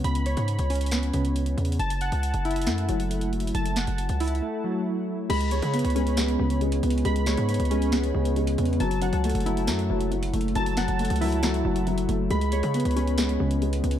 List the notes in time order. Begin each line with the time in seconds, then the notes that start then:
Already playing: C#3 B3 C#4
0.04 C#2 B5, closed hi-hat
0.15 closed hi-hat
0.26 C#5, closed hi-hat
0.37 G#2, closed hi-hat
0.48 closed hi-hat
0.59 C#2, closed hi-hat
0.70 C#4, closed hi-hat, open hi-hat
0.76 closed hi-hat
0.81 closed hi-hat
0.86 closed hi-hat
0.91 B3, snare, closed hi-hat
1.03 closed hi-hat
1.14 C#2 C#3, closed hi-hat
1.25 closed hi-hat
1.36 closed hi-hat
1.46 closed hi-hat
1.57 E2, closed hi-hat
1.65 closed hi-hat
1.72 closed hi-hat
1.79 F#1 A5, closed hi-hat
1.90 closed hi-hat
2.01 F#5, closed hi-hat
2.12 C#2, closed hi-hat
2.23 closed hi-hat
2.34 F#1, closed hi-hat
2.45 E4, closed hi-hat
2.51 closed hi-hat
2.56 closed hi-hat
2.62 closed hi-hat
2.67 F#2 A3, snare, closed hi-hat
2.78 closed hi-hat
2.89 F#1 F#3, closed hi-hat
3.00 closed hi-hat
3.11 closed hi-hat
3.21 closed hi-hat
3.33 closed hi-hat
3.40 closed hi-hat
3.47 closed hi-hat
3.55 F#1 A5, closed hi-hat
3.66 closed hi-hat
3.76 F#5, snare, closed hi-hat
3.87 F#1, closed hi-hat
3.98 closed hi-hat
4.09 C#2, closed hi-hat
4.20 E4, closed hi-hat, open hi-hat
4.28 closed hi-hat
4.35 closed hi-hat
4.42 A3
4.64 F#3
5.30 C#2 G#3 B5, closed hi-hat, crash
5.41 closed hi-hat
5.51 G#3 C#5, closed hi-hat
5.62 C#3, closed hi-hat
5.73 B3, closed hi-hat
5.79 closed hi-hat
5.85 C#2, closed hi-hat
5.90 closed hi-hat
5.95 G#3 C#4, closed hi-hat
6.07 closed hi-hat
6.17 G#3 B3, snare, closed hi-hat
6.28 closed hi-hat
6.39 C#2 C#3 G#3
6.50 closed hi-hat
6.61 G#3, closed hi-hat
6.72 closed hi-hat
6.83 C#2 B3, closed hi-hat
6.90 closed hi-hat
6.98 closed hi-hat
7.05 C#2 G#3 B5, closed hi-hat
7.16 closed hi-hat
7.26 G#3 C#5, snare, closed hi-hat
7.37 G#2, closed hi-hat
7.49 B3, closed hi-hat
7.54 closed hi-hat
7.60 C#2, closed hi-hat
7.65 closed hi-hat
7.71 G#3 C#4, closed hi-hat
7.82 closed hi-hat
7.92 G#3 B3, snare, closed hi-hat
8.04 closed hi-hat
8.14 C#2 C#3 G#3
8.25 closed hi-hat
8.36 G#3, closed hi-hat
8.47 closed hi-hat
8.58 E2 B3, closed hi-hat
8.65 closed hi-hat
8.73 closed hi-hat
8.80 F#1 F#3 A5, closed hi-hat
8.91 closed hi-hat
9.02 F#3 F#5, closed hi-hat
9.13 C#2, closed hi-hat
9.24 A3, closed hi-hat
9.29 closed hi-hat
9.35 F#1, closed hi-hat
9.40 closed hi-hat
9.46 F#3 E4, closed hi-hat
9.57 closed hi-hat
9.67 F#2 F#3 A3, snare, closed hi-hat
9.79 closed hi-hat
9.90 F#1 F#3
10.01 closed hi-hat
10.11 F#3, closed hi-hat
10.23 closed hi-hat
10.33 F#1 A3, closed hi-hat
10.41 closed hi-hat
10.48 closed hi-hat
10.55 F#1 F#3 A5, closed hi-hat
10.66 closed hi-hat
10.77 F#3 F#5, snare, closed hi-hat
10.88 F#1, closed hi-hat
10.99 A3, closed hi-hat
11.05 closed hi-hat
11.10 C#2, closed hi-hat
11.16 closed hi-hat
11.21 F#3 E4, open hi-hat
11.32 closed hi-hat
11.43 F#3 A3, snare, closed hi-hat
11.54 closed hi-hat
11.65 F#1 F#3
11.76 closed hi-hat
11.87 F#3, closed hi-hat
11.98 closed hi-hat
12.09 F#1 A3, closed hi-hat
12.30 C#2 G#3 B5, closed hi-hat
12.41 closed hi-hat
12.52 G#3 C#5, closed hi-hat
12.63 C#3, closed hi-hat
12.74 B3, closed hi-hat
12.80 closed hi-hat
12.85 C#2, closed hi-hat
12.91 closed hi-hat
12.96 G#3 C#4, closed hi-hat
13.07 closed hi-hat
13.18 G#3 B3, snare, closed hi-hat
13.29 closed hi-hat
13.40 C#2 C#3 G#3
13.51 closed hi-hat
13.62 G#3, closed hi-hat
13.73 closed hi-hat
13.83 C#2 B3, closed hi-hat
13.91 closed hi-hat